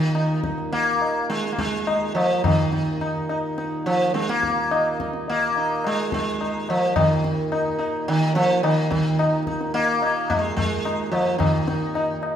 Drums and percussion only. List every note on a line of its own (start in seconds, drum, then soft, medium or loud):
0.15 tabla na medium
0.44 tabla ke medium
0.58 tabla te medium
0.72 tabla tin medium
1.01 tabla na medium
1.30 tabla te medium
1.45 tabla te medium
1.58 tabla ke medium
1.73 tabla te medium
1.87 tabla na medium
2.17 tabla na medium
2.44 tabla na loud
2.44 tabla ge medium
2.72 tabla te medium
3.01 tabla na medium
3.29 tabla na medium
3.58 tabla te medium
3.87 tabla te medium
4.15 tabla te medium
4.29 tabla te medium
4.43 tabla ke medium
4.58 tabla te medium
4.71 tabla na medium
5.00 tabla ke medium
5.13 tabla te medium
5.28 tabla tin medium
5.56 tabla na medium
5.84 tabla na medium
6.12 tabla ke medium
6.41 tabla na medium
6.69 tabla na medium
6.96 tabla na loud
6.96 tabla ge loud
7.24 tabla te medium
7.52 tabla na medium
7.80 tabla na medium
8.08 tabla te medium
8.36 tabla te medium
8.64 tabla na medium
8.92 tabla ke medium
9.19 tabla na medium
9.47 tabla ke medium
9.61 tabla te medium
9.75 tabla tin medium
10.02 tabla na medium
10.30 tabla na medium
10.30 tabla ge medium
10.58 tabla ge medium
10.85 tabla na medium
11.13 tabla na medium
11.40 tabla na loud
11.40 tabla ge medium
11.68 tabla te medium
11.95 tabla na medium
12.23 tabla na medium